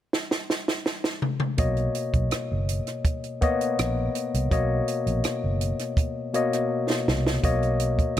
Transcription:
0.13 snare
0.31 snare
0.50 snare
0.68 snare
0.86 snare
1.04 snare
1.22 mid tom
1.40 mid tom
1.57 B1 B2 A#3 C#5 D#5, kick, closed hi-hat
1.77 closed hi-hat
1.95 closed hi-hat
2.14 B1, kick, closed hi-hat
2.31 cross-stick, closed hi-hat
2.51 F#1
2.69 closed hi-hat
2.87 cross-stick, closed hi-hat
3.05 kick, closed hi-hat
3.24 closed hi-hat
3.41 A#3 B3 C#5 D#5, kick, closed hi-hat
3.61 closed hi-hat
3.79 A#1, cross-stick, closed hi-hat
4.15 closed hi-hat
4.34 C2, closed hi-hat
4.51 B1 B2 A#3 C#5 D#5, kick, closed hi-hat
4.88 closed hi-hat
5.06 A#1, closed hi-hat
5.24 cross-stick, closed hi-hat
5.44 F#1
5.61 closed hi-hat
5.79 cross-stick, closed hi-hat
5.97 kick, closed hi-hat
6.33 B2 A#3 C#5 D#5, closed hi-hat
6.53 cross-stick, closed hi-hat
6.90 snare
7.08 C2, snare
7.27 snare
7.43 B1 B2 A#3 C#5 D#5, kick, closed hi-hat
7.63 closed hi-hat
7.80 closed hi-hat
7.99 kick, closed hi-hat
8.17 C#2, closed hi-hat

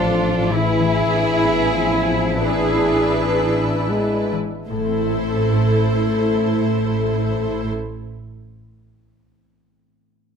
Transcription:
Already playing: A1 A2 F3 A3 D4 F4 A4
0.20 A3
0.49 A2 E3 E4 G#4
0.80 E3
1.10 D4
1.42 B3
1.74 F3 C4
2.07 B3
2.40 E3 D4 E4 G#4 B4
2.76 B3
3.12 D4
3.50 G#4
3.89 G#3 B3
4.32 E3
4.68 A1 A2 A3 E4 A4 C5
4.78 A3
4.85 C4
4.91 E4
4.98 A4
5.06 E5

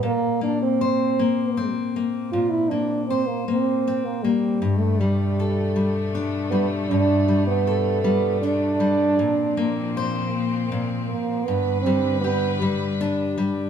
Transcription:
0.03 A#2 A#3
0.41 A#3 D4
0.62 C4
0.81 C5
1.19 A#3
1.57 C4
1.96 A#3
2.32 A#2 F4
2.50 E4
2.69 A#3 D4
3.07 C4 C5
3.27 A#3
3.48 A#3 C4
3.87 C4
4.05 A#3
4.23 G3 A#3
4.62 G2 B2 G3 A3
4.79 A3
4.99 G3
5.40 A4
5.76 G3
6.15 D4
6.51 G3 B3
6.89 G2 D4
7.28 G3
7.47 B3
7.67 A4
8.03 G3 B3
8.42 D4
8.80 G3
9.19 A#2 F3 C4
9.57 A#3
9.97 C5
10.72 A#2
11.08 A#3
11.45 G2 D3 B3 B4
11.82 C4
11.86 G3
12.21 B3 G4
12.62 G3
13.01 D4
13.38 G3

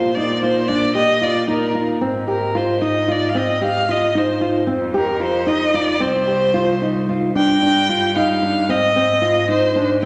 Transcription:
Already playing: A#2 F4 C5
0.15 D#4 D5
0.42 F4 C5
0.68 D4 D5
0.95 G4 D#5
1.21 F4 D5
1.48 D#4 A#4
1.75 F4
2.01 G#2 C4
2.28 G4 A#4
2.55 F4 C5
2.81 D#4 D#5
3.08 F4 D5
3.29 F5
3.35 C4 D#5
3.61 G4 F5
3.89 F4 D#5
4.15 D#4 C5
4.41 F4
4.67 F2 C4
4.94 G4 A#4
5.20 F4 C5
5.46 D#4 D#5
5.74 F4 D5
6.00 C2 C4 C5
6.27 G4
6.54 F4
6.82 D#4
7.09 F4
7.35 G2 D4 G5
7.62 D4
7.89 F4
8.16 D#4 F5
8.43 D4
8.69 G#2 C4 D#5
8.96 C4
9.22 F4
9.48 D#4 C5
9.76 D4
10.02 C3 G5

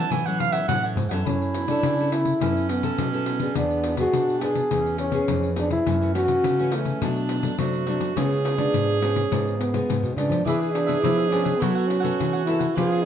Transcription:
Already playing: F#3 C#4 E4 A4 A5
0.10 A2 E3 E4 A4 C#5 F#5 G#5, pandeiro
0.26 F#3 C#4 E4 A4 C#5 F#5, pandeiro
0.38 F5, muted cavaquinho stroke, pandeiro
0.52 A4 C#5 E5 F#5, pandeiro
0.68 A2 E3 F#3 C#4 E4 F#5, pandeiro
0.83 A4 C#5 F#5, pandeiro
0.96 G#2, pandeiro
1.09 F#2 C#4 E4 A4 C#5 F#5, pandeiro
1.25 F#2 F#3 C#4 E4, pandeiro
1.42 pandeiro
1.54 pandeiro
1.68 C#4 D4 E4 A4, pandeiro
1.83 C#3, pandeiro
1.99 C#4 E4 A4, pandeiro
2.12 E4, pandeiro
2.25 pandeiro
2.40 F#2 F#3 B3 C#4 E4 A4, pandeiro
2.57 pandeiro
2.69 B3, pandeiro
2.83 B3 E4 A4, pandeiro
2.98 B2 F#3, pandeiro
3.13 B3 E4 A4, pandeiro
3.26 pandeiro
3.40 B3 D4 G#4, pandeiro
3.55 E2 E3 B3 D4, pandeiro
3.71 pandeiro
3.84 pandeiro
3.97 B3 D4 F#4 G#4, pandeiro
4.13 B2 D4, pandeiro
4.29 pandeiro
4.41 B3 D4 G#4, pandeiro
4.55 pandeiro
4.71 E2 E3 B3 C#4 G#4, pandeiro
4.86 pandeiro
4.98 C#4, pandeiro
5.12 B3 C#4 G#4, pandeiro
5.28 F2 E3, pandeiro
5.43 pandeiro
5.56 B3 C#4 D4 G#4, pandeiro
5.71 E4, pandeiro
5.85 F#2 E3 A3 C#4, pandeiro
6.01 E3 A3 C#4, pandeiro
6.14 E3 A3 C#4 F#4, pandeiro
6.28 pandeiro
6.44 C#3, pandeiro
6.59 E3 A3 C#4, pandeiro
6.72 A3, pandeiro
6.85 pandeiro
7.02 B2 F#3 A3 D4, pandeiro
7.16 pandeiro
7.29 pandeiro
7.43 F#3 A3 D4, pandeiro
7.58 F#2 C3 F#3 A3 D4 F#4, pandeiro
7.73 pandeiro
7.87 F#3 A3 D4, pandeiro
8.01 pandeiro
8.16 C#3 G#3 B3 C#4 F4 G#4, pandeiro
8.32 pandeiro
8.45 pandeiro
8.57 G#3 B3 D4 F4, pandeiro
8.72 G#2, pandeiro
8.89 pandeiro
9.02 G#3 B3 C#4 F4, pandeiro
9.16 pandeiro
9.31 G#2 C#3 G#3 B3 F4, pandeiro
9.47 pandeiro
9.59 B3, pandeiro
9.74 G#3 B3 F4, pandeiro
9.89 G#2, pandeiro
10.03 B2, pandeiro
10.16 C#3 G#3 B3 D4 F4, pandeiro
10.30 F3, pandeiro
10.45 E3 B3 D4 E4 G#4 B4 E5, pandeiro
10.60 G#4 B4 E5, pandeiro
10.73 D4, muted cavaquinho stroke, pandeiro
10.86 B3 D4 G#4 B4 E5, pandeiro
11.02 B2 F3 D4 E4 G#4 B4 E5, pandeiro
11.17 G#4 B4 E5, pandeiro
11.30 B3 C#4 D4 G#4 B4 E5, pandeiro
11.44 G#4 B4 E5, pandeiro
11.59 F#3 B3 E4 F#4 A4 C#5 F#5, pandeiro
11.75 A4 C#5 F#5, pandeiro
11.87 C#4, muted cavaquinho stroke, pandeiro
12.00 B3 E4 A4 C#5 F#5
12.04 pandeiro
12.20 C#3 E3, pandeiro
12.33 A4 C#5 F#5, pandeiro
12.46 B3 E4 A4, pandeiro
12.59 A4 C#5 F#5, pandeiro
12.75 F3 C#4 F4 G#4 B4 C#5 F5, pandeiro
12.79 B3 G#4
12.89 B4 C#5 F5, pandeiro

